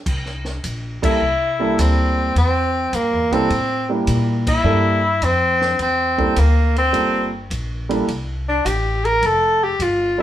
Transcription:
0.06 C2, kick, crash
0.26 snare
0.45 snare
0.64 A#1, kick, hi-hat pedal, ride
1.02 G3 A#3 D4 E4 A4, muted upright bass stroke, kick, crash
1.21 C2
1.60 G3 A#3 D4 E4 A4
1.78 D2 C4, kick, hi-hat pedal, ride
2.35 E2 C4, kick, ride
2.93 G2 A#3, kick, hi-hat pedal, ride
3.13 E2
3.31 C2 G3 A#3 C4 D4 E4 A4, ride
3.50 A2, kick, ride
3.89 G3 A#3 D4 E4 G4
4.07 A#2, kick, hi-hat pedal, ride
4.47 E4, kick, crash
4.64 G2 G3 A#3 D4 E4 A4
5.22 F2 C4, kick, hi-hat pedal, ride
5.61 snare
5.79 E2 C4, kick, ride
6.18 G3 A#3 D4 E4 A4, kick
6.36 D2 A#3, hi-hat pedal, ride
6.76 C4, ride
6.93 G1 G3 A#3 D4 F4 A4, kick, ride
7.50 A#1, kick, hi-hat pedal, ride
7.89 G3 A#3 D4 E4 A4, ride
8.08 C2, kick, ride
8.49 D4
8.65 A1 G4, kick, hi-hat pedal, ride
9.05 A#4, ride
9.22 F1 A4, kick, ride
9.64 G4
9.79 G1 F4, kick, hi-hat pedal, ride
10.18 G3 C4 D4 D#4 A4

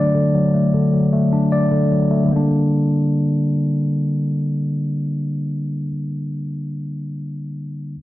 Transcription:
Already playing: D3 F#3 A3 D4 D5
0.15 D3
0.34 F#3
0.54 A3
0.74 D3
0.93 F#3
1.13 A3
1.32 D4
1.52 D5
1.71 D3
1.91 F#3
2.11 A3
2.24 D3
2.28 G3 A#3
2.36 D4

